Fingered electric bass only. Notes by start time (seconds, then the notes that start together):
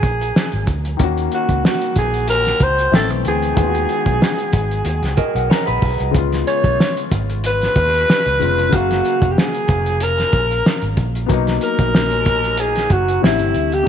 0.03 A#1
0.53 G#1
0.67 D2
1.00 D#2
1.49 C#2
1.96 A#1
2.60 C#2
2.92 A1
3.10 B1
3.24 D2
3.57 D#2
4.06 B1
4.53 G#1
4.85 D#2
5.02 C#2
5.35 B1
5.68 A#1
5.82 B1
6.00 C2
6.15 C#2
6.64 B1
7.12 G#1
7.76 D#2
8.26 C#2
8.41 F1
8.73 F#1
9.22 F1
9.69 F1
10.33 A#1
10.82 G#1
10.98 A#1
11.30 B1
11.79 A#1
12.90 F#1
13.23 A1
13.40 G1
13.55 D2